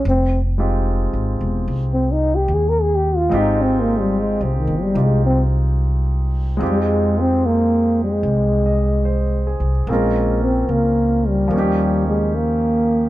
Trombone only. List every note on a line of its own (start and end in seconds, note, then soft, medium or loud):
0.09 0.40 C4 medium
1.93 2.13 C4 medium
2.12 2.37 D#4 medium
2.35 2.56 G4 medium
2.54 2.71 G#4 medium
2.69 2.84 A#4 medium
2.82 2.97 G#4 medium
2.95 3.18 G4 medium
3.16 3.40 F4 medium
3.39 3.63 D#4 medium
3.62 3.82 C4 medium
3.80 4.01 A#3 medium
4.00 4.21 G3 medium
4.19 4.45 G#3 medium
4.43 4.61 C3 medium
4.59 4.84 D#3 medium
4.82 5.06 G3 medium
5.05 5.26 G#3 medium
5.26 5.42 C4 medium
6.69 7.22 G#3 medium
7.21 7.47 C4 medium
7.46 7.99 A#3 medium
8.04 9.61 G#3 medium
9.90 10.45 G#3 medium
10.43 10.73 C4 medium
10.71 11.30 A#3 medium
11.28 12.07 G3 medium
12.08 12.37 G#3 medium
12.35 13.09 A#3 medium